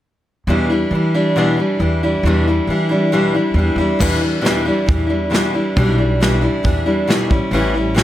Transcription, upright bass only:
0.47 0.83 E2 medium
0.91 1.61 E3 medium
1.80 2.15 E2 medium
2.23 2.59 E2 medium
2.67 3.38 E3 medium
3.54 3.73 E2 medium
3.76 3.94 E2 medium
4.00 4.70 E2 medium
4.88 5.59 E2 medium
5.76 6.47 B1 loud
6.64 7.17 E2 medium
7.31 7.39 A1 medium
7.51 8.03 A1 medium

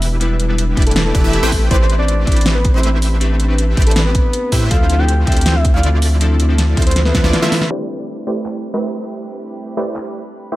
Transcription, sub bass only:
0.00 0.75 E1 loud
0.77 1.13 E1 loud
1.15 1.22 E1 loud
1.24 1.41 E1 loud
1.43 1.69 A1 loud
1.71 2.25 A1 loud
2.27 2.72 A1 medium
2.74 3.75 A1 loud
3.77 4.20 A1 medium
4.52 4.69 A2 loud
4.71 5.25 D2 loud
5.27 5.72 D2 medium
5.74 6.75 D2 loud
6.77 7.13 D2 medium
7.15 7.22 D2 loud
7.24 7.33 D2 loud

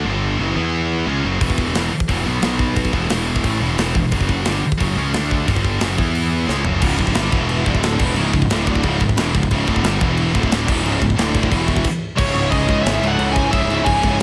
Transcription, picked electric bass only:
0.05 0.37 G1 medium
0.39 0.55 F#1 medium
0.57 1.04 E2 medium
1.07 1.23 C#2 medium
1.25 1.40 F#1 medium
1.41 1.72 E1 medium
1.76 1.91 E1 medium
1.93 muted picked electric bass stroke soft
2.09 2.24 E1 medium
2.25 2.41 B1 medium
2.42 2.90 B1 medium
2.93 3.09 E1 medium
3.10 3.42 E1 medium
3.44 3.60 A1 medium
3.61 3.77 E1 medium
3.78 3.94 E1 medium
3.95 4.11 E1 medium
4.12 4.44 F#1 medium
4.46 4.62 G1 medium
4.65 muted picked electric bass stroke soft
4.80 4.96 F#1 medium
4.96 5.12 C#2 medium
5.14 5.45 D2 loud
5.48 5.79 G1 medium
5.81 5.97 F#1 medium
5.99 6.45 E2 medium
6.48 6.64 C#2 medium
6.65 6.81 F#1 medium
6.82 6.98 C#1 medium
6.99 7.14 D1 medium
7.15 7.31 G1 loud
7.32 7.64 E1 loud
7.66 7.97 D1 medium
8.00 8.15 E1 loud
8.17 8.33 C#1 medium
8.33 8.49 C#1 medium
8.49 8.81 D1 loud
8.84 8.99 C#1 medium
9.00 9.15 C#1 medium
9.16 9.32 E1 loud
9.34 9.50 C#1 medium
9.51 9.66 C#1 loud
9.68 9.83 D1 loud
9.83 9.99 G1 loud
10.01 10.32 E1 medium
10.35 10.66 D1 medium
10.69 10.83 E1 loud
10.83 11.00 C#1 loud
11.02 11.17 C#1 medium
11.17 11.49 D1 medium
11.51 11.83 E1 medium
12.18 12.32 C#1 medium
12.35 12.49 C#1 loud
12.52 12.66 C#2 loud
12.68 12.82 C#2 medium
12.86 12.99 G#1 medium
13.01 13.15 C#1 medium
13.19 13.45 C#2 medium
13.53 13.66 C#1 medium
13.69 13.82 C#1 medium
13.86 14.00 C#1 medium
14.03 14.16 C#1 medium

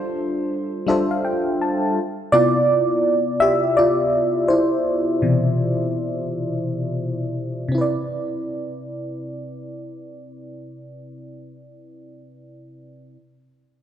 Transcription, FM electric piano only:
0.00 0.87 G3 medium
0.00 0.88 D4 medium
0.00 0.88 F4 medium
0.00 0.89 A4 medium
0.00 0.90 C5 loud
0.87 1.86 G3 medium
0.87 1.86 D4 medium
0.87 1.86 F4 medium
0.87 1.87 A4 medium
0.87 1.87 C5 medium
0.87 1.09 E5 medium
1.11 1.23 F5 medium
1.25 1.58 G5 medium
1.61 1.94 A5 medium
2.32 2.84 C3 soft
2.32 2.84 B3 medium
2.32 2.84 E4 soft
2.32 3.37 F4 medium
2.32 3.44 D5 medium
3.40 3.56 G4 medium
3.40 3.54 E5 loud
3.77 4.46 F4 medium
3.77 4.51 D5 medium
4.48 6.98 E4 medium
4.48 6.97 C5 medium
5.22 6.26 B2 medium
5.22 6.26 C3 medium
5.22 6.26 E3 soft
7.68 12.06 C3 medium
7.68 12.08 C4 medium
7.75 12.09 E4 medium
7.75 12.11 B4 medium
7.81 12.13 D5 medium

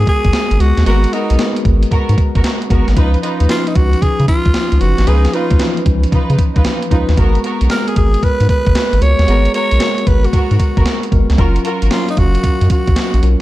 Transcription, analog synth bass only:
0.25 0.31 G#1 medium
0.51 0.58 G#1 medium
0.60 0.73 C#2 medium
0.78 0.84 D#2 loud
0.86 1.06 G#1 loud
1.31 1.37 B1 medium
1.65 1.85 G#1 medium
1.91 1.98 G#2 soft
2.09 2.16 G#2 loud
2.36 2.42 G#1 medium
2.71 2.84 G#1 medium
2.88 2.95 G#1 medium
2.97 3.16 C#2 medium
3.41 3.47 D#2 medium
3.76 3.95 C#2 loud
4.02 4.09 C#3 soft
4.20 4.26 C#3 loud
4.46 4.52 C#2 medium
4.72 4.79 C#2 medium
4.81 4.94 F#1 medium
4.99 5.05 G#1 medium
5.08 5.27 C#2 loud
5.51 5.58 D#2 medium
5.86 6.06 C#2 loud
6.13 6.20 C#3 soft
6.30 6.37 C#3 medium
6.56 6.63 C#2 medium
6.91 7.05 C#2 medium
7.09 7.16 D#2 medium
7.18 7.37 G#1 loud
7.61 7.68 B1 medium
7.97 8.16 G#1 loud
8.23 8.30 G#2 soft
8.41 8.47 G#2 loud
8.67 8.74 G#1 medium
8.93 9.00 G#1 medium
9.02 9.15 C#2 medium
9.19 9.26 D#2 loud
9.28 9.48 G#1 loud
9.72 9.79 B1 loud
10.07 10.27 G#1 medium
10.33 10.40 G#2 soft
10.51 10.58 G#2 medium
10.77 10.84 G#1 medium
11.12 11.25 G#1 medium
11.30 11.37 C#2 medium
11.39 11.58 F#1 loud
11.83 11.89 G#1 medium
12.17 12.37 F#1 medium
12.44 12.51 F#2 soft
12.62 12.68 F#2 loud
12.88 12.94 A#1 medium
13.14 13.21 A#1 medium
13.23 13.36 B1 medium

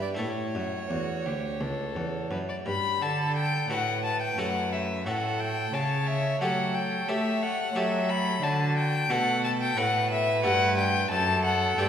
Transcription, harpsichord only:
0.00 0.16 G2 soft
0.00 0.14 E4 soft
0.00 0.15 D5 soft
0.15 2.95 A3 soft
0.15 2.96 E4 soft
0.15 2.97 A4 soft
0.19 0.51 A2 soft
0.55 0.87 F#2 soft
0.91 1.22 E2 soft
1.26 1.58 D2 soft
1.61 1.92 C#2 soft
1.96 2.28 E2 soft
2.31 2.63 F#2 soft
2.66 2.98 G2 soft
3.02 3.66 D3 soft
3.70 4.35 A2 medium
3.70 4.19 A3 soft
3.70 4.20 F#4 soft
3.70 4.20 A4 soft
4.38 5.02 F#2 medium
4.38 4.88 A3 soft
4.38 4.88 F#4 soft
4.38 4.88 A4 medium
5.06 5.70 A2 soft
5.06 5.55 A3 soft
5.06 5.55 F#4 soft
5.06 5.56 A4 soft
5.74 6.37 C#3 soft
6.41 7.05 F#3 medium
6.41 6.90 A3 soft
6.41 6.90 G4 soft
6.41 6.91 A4 medium
7.08 7.57 A3 medium
7.08 7.58 G4 soft
7.08 7.58 A4 soft
7.76 8.39 F#3 medium
7.76 8.24 A3 soft
7.76 8.25 G4 soft
7.76 8.25 A4 soft
8.42 9.07 D3 medium
9.10 9.73 B2 medium
9.10 9.58 A3 medium
9.10 9.59 F#4 soft
9.10 9.59 A4 medium
9.77 10.40 A2 medium
9.77 10.25 A3 medium
9.77 10.26 F#4 medium
9.77 10.26 A4 medium
10.43 11.07 G2 medium
10.43 10.92 A3 soft
10.43 10.92 F#4 soft
10.43 10.93 A4 soft
11.12 11.75 F#2 medium
11.78 11.89 G2 medium
11.78 11.89 A3 medium
11.78 11.89 A4 medium
11.78 11.89 D5 medium

